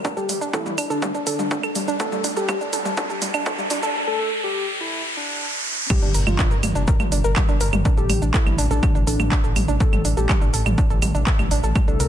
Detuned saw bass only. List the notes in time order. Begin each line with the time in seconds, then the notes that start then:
6.03 G1
6.15 G1
6.27 G1
6.51 G1
6.63 G1
6.76 G1
7.00 G1
7.12 G1
7.24 G1
7.49 G1
7.61 G1
7.73 G1
7.97 A1
8.10 A1
8.22 A1
8.46 A1
8.58 A1
8.71 A1
8.95 A1
9.07 A1
9.20 A1
9.44 A1
9.56 A1
9.68 A1
9.93 A1
10.05 A1
10.17 A1
10.42 A1
10.54 A1
10.66 A1
10.90 A1
11.02 A1
11.15 A1
11.39 A1
11.51 A1
11.63 A1
11.88 C2
12.00 C2